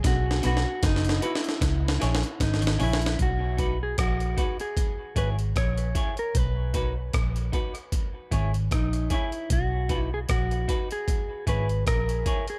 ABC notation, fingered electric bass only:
X:1
M:4/4
L:1/16
Q:"Swing 16ths" 1/4=76
K:B
V:1 name="Fingered electric bass" clef=bass
B,,,2 B,,, z F,,,2 z2 C,,2 A,,, z G,,,2 A,,,2 | B,,,4 A,,,2 z4 G,,,2 A,,,2 z2 | B,,,4 A,,,2 z4 G,,,2 A,,,2 z2 | B,,,4 A,,,2 z4 G,,,2 A,,,2 z2 |]